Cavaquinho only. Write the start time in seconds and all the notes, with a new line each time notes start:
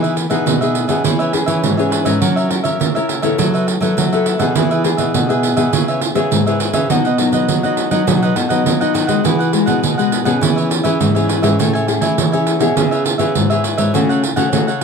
0.02 G#4 B4 E5
0.16 muted cavaquinho stroke
0.30 G#4 B4 E5
0.61 G#4 B4 E5
0.88 G#4 B4 E5
1.04 E4 B4 C#5 E5
1.19 B4 C#5 E5
1.33 muted cavaquinho stroke
1.46 B4 C#5 E5
1.77 B4 C#5 E5
1.90 E4 B4 C#5 E5
2.05 B4 C#5 E5
2.21 F#4 A#4 C#5 E5
2.36 A#4 C#5 E5
2.50 muted cavaquinho stroke
2.64 A#4 C#5 E5
2.95 A#4 C#5 E5
3.22 A#4 C#5 E5
3.39 E4 A4 B4 E5
3.54 A4 B4 E5
3.67 muted cavaquinho stroke
3.81 A4 B4 E5
4.12 A4 B4 E5
4.26 E4 A4 B4 E5
4.39 A4 B4 E5
4.55 E4 G#4 B4 E5
4.71 G#4 B4 E5
4.84 muted cavaquinho stroke
4.97 G#4 B4 E5
5.29 G#4 B4 E5
5.56 G#4 B4 E5
5.73 E4 B4 C#5 E5
5.88 B4 C#5 E5
6.01 muted cavaquinho stroke
6.15 B4 C#5 E5
6.46 B4 C#5 E5
6.60 E4 B4 C#5 E5
6.74 B4 C#5 E5
6.90 F#4 B4 D#5 F#5
7.05 B4 D#5 F#5
7.19 muted cavaquinho stroke
7.33 B4 D#5 F#5
7.63 B4 D#5 F#5
7.91 B4 D#5 F#5
8.07 F#4 B4 D#5 F#5
8.23 B4 D#5 F#5
8.36 muted cavaquinho stroke
8.49 B4 D#5 F#5
8.81 B4 D#5 F#5
8.94 F#4 B4 D#5 F#5
9.07 B4 D#5 F#5
9.23 E4 G#4 B4 F#5
9.39 G#4 B4 F#5
9.52 muted cavaquinho stroke
9.66 G#4 B4 F#5
9.98 G#4 B4 F#5
10.25 G#4 B4 F#5
10.41 E4 B4 C#5 E5
10.56 B4 C#5 E5
10.70 muted cavaquinho stroke
10.84 B4 C#5 E5
11.15 B4 C#5 E5
11.28 E4 B4 C#5 E5
11.42 B4 C#5 E5
11.59 A4 C#5 E5 G#5
11.73 C#5 E5 G#5
11.88 muted cavaquinho stroke
12.01 C#5 E5 G#5
12.32 C#5 E5 G#5
12.59 C#5 E5 G#5
12.76 E4 B4 C#5 E5
12.91 B4 C#5 E5
13.04 muted cavaquinho stroke
13.18 B4 C#5 E5
13.50 B4 C#5 E5
13.64 E4 B4 C#5 E5
13.78 B4 C#5 E5
13.94 F#4 A4 C#5 F#5
14.09 A4 C#5 F#5
14.23 muted cavaquinho stroke
14.36 A4 C#5 F#5
14.67 A4 C#5 F#5